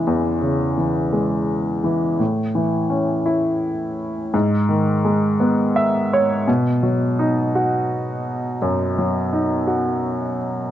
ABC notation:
X:1
M:6/8
L:1/8
Q:3/8=56
K:Alyd
V:1 name="Grand piano"
z6 | z6 | z4 e c | z6 |
z6 |]
V:2 name="Grand piano" clef=bass
[E,,E,G,] C, E, G,2 E, | A,, E, C E3 | G,, D, G, B,3 | B,, F, D F3 |
F,, F, D F3 |]